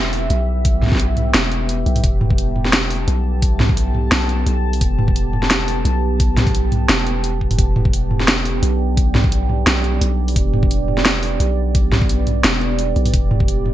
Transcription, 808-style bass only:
Already playing: E1
0.30 B1
1.34 E1
1.86 B1
2.04 E1
3.08 B1
4.12 B1
4.46 B1
4.81 E1
5.85 B1
6.89 E1
7.59 E1
8.63 B1
9.67 B1
10.01 B1
10.36 E1
11.40 B1
12.44 E1
12.96 B1
13.13 E1

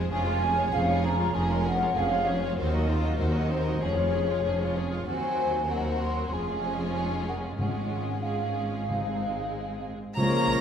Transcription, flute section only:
0.12 G#5
0.73 F5
1.04 A#5
1.34 G#5
1.66 F#5
1.96 F5
2.26 C#5
2.57 A#4
3.50 C5
3.82 C#5
5.07 G#5
5.69 F#5
6.00 C6
6.32 G#5
7.28 F#5
7.60 F#5
8.24 F5
10.17 C#6

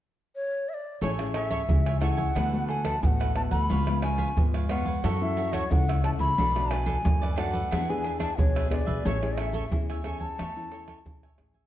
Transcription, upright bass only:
1.02 A1
1.69 C#2
2.35 D2
3.03 A1
3.51 D2
3.70 C#2
4.37 F2
5.04 F#2
5.71 C#2
6.19 C#2
6.38 B1
7.05 F#2
7.72 E2
8.39 B1
8.88 B1
9.05 A1
9.72 E2
10.40 E2
11.06 B1
11.38 A1

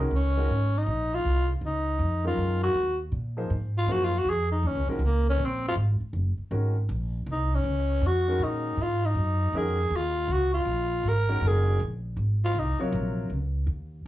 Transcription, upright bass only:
0.11 C#2
0.48 G#1
0.86 A#1
1.25 C2
1.61 C#2
1.99 F2
2.37 F#2
2.74 D#2
3.12 A#2
3.50 G#2
3.87 F#2
4.25 F2
4.63 D#2
4.75 C#2
4.86 A#1
4.99 C#2
5.38 A#1
5.76 G#1
6.00 muted upright bass stroke
6.13 F#1
6.38 muted upright bass stroke
6.51 G#1
6.89 A#1
7.26 C2
7.64 C#2
8.01 F2
8.39 A#2
8.77 G#2
9.15 F#2
9.52 F2
9.90 D#2
10.28 C#2
10.65 A#1
11.03 G#1
11.41 F#1
11.79 A#1
12.17 G#1
12.54 C2
12.92 A#1
13.30 C#2
13.67 D#2

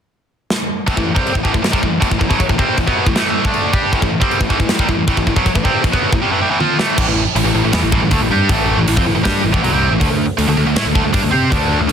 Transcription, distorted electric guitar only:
0.87 A2 E3
0.96 A2 E3
1.15 C3 G3 C4
1.33 A2 E3
1.43 A2 E3
1.53 A2 E3
1.62 A2 E3
1.72 C3 G3
1.82 A2 E3
2.01 A2 E3
2.10 A2 E3
2.20 A2 E3
2.30 B2 F#3
2.39 muted distorted electric guitar stroke
2.49 A2 E3
2.58 C3 G3 C4
2.78 A2 E3
2.87 B2 F#3 B3
3.06 A2 E3
3.16 A2 E3 A3
3.45 D3 A3 D4
3.73 G3 D4 G4
3.92 A2 E3
4.02 A2 E3
4.21 C3 G3 C4
4.40 A2 E3
4.50 A2 E3
4.60 A2 E3
4.70 A2 E3
4.80 C3 G3
4.89 A2 E3
5.07 A2 E3
5.17 A2 E3
5.27 A2 E3
5.36 B2 F#3
5.46 muted distorted electric guitar stroke
5.56 A2 E3
5.64 C3 G3 C4
5.84 A2 E3
5.92 B2 F#3 B3
6.13 A2 E3
6.22 C3 G3
6.31 A2 E3
6.41 C3 G3
6.50 A2 E3
6.60 F3 C4 F4
6.78 A2 E3 A3
6.97 A2 E3
7.07 A2 E3
7.36 A2 E3
7.44 A2 E3
7.54 A2 E3
7.64 A2 E3
7.73 E3 B3
7.82 A2 E3
7.92 A2 E3
8.02 A2 E3
8.11 D3 A3
8.22 A2 E3
8.31 G3 D4 G4
8.50 A2 E3 A3
8.79 A2 E3
8.88 A2 E3
8.97 F3 C4
9.06 A2 E3
9.15 A2 E3
9.23 G3 D4 G4
9.44 A2 E3
9.52 A2 E3
9.63 B2 F#3
9.72 C3 G3 C4
9.91 A2 E3
10.00 D3 A3
10.11 D3 A3
10.38 D3 A3
10.48 D3 A3
10.57 D3 A3
10.66 D3 A3
10.76 A3 E4
10.85 D3 A3
10.95 D3 A3
11.04 D3 A3
11.13 G3 D4
11.22 D3 A3
11.31 C4 G4 C5
11.50 D3 A3 D4
11.79 D3 A3
11.87 D3 A3

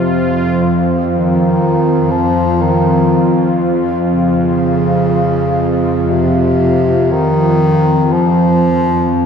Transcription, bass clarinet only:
Already playing: C3
1.12 D#3
2.11 F3
2.61 D#3
4.09 C#3
6.10 C3
7.12 D#3
8.12 F3

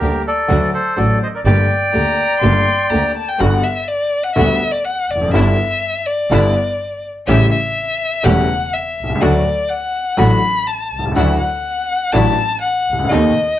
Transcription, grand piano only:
0.01 D2 D3 G3 A#3 G4
0.48 D2 D3 F#3 A3 F#4
0.96 A1 A2 D3 F#3 A3 F#4
1.45 G1 G2 D3 A3 A#3 G4
1.93 D2 D3 A3 A#3 G4
2.43 G1 G2 D3 A3 A#3 G4
2.91 D2 D3 A3 A#3 G4
3.39 G1 G2 D3 G3 B3 F#4
4.36 D2 D3 G3 B3 F#4
5.15 E2
5.21 F2
5.28 F#2
5.33 G1 G2 D3 G3 B3 E4
6.31 G1 G2 D3 G3 B3 E4
7.28 A1 A2 C#3 G3 A3 E4
8.23 E1 E2 C#3 G3 A3 E4
9.03 B1
9.10 C2
9.15 C#2
9.21 D2 D3 F#3 A3 F#4
10.17 A1 A2 D3 F#3 A3 F#4
10.99 B1
11.05 C2
11.11 C#2
11.16 D2 D3 E3 A3 D4 F#4
12.12 A1 A2 E3 A3 D4 F#4
12.93 C2
12.99 C#2
13.04 D2
13.11 D#2 D#3 A3 C4 G4

